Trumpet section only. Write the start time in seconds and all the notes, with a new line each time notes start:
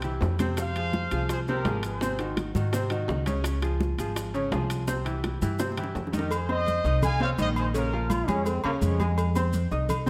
0.60 C5 F5
1.32 G#4 C5
1.49 G4 A#4
1.86 G#4 C5
6.15 G4 A#4
6.34 G#4 C5
6.51 C5 D#5
7.04 F5 G#5
7.22 C#5 F5
7.41 C5 D#5
7.59 G#4 C5
7.77 F4 A#4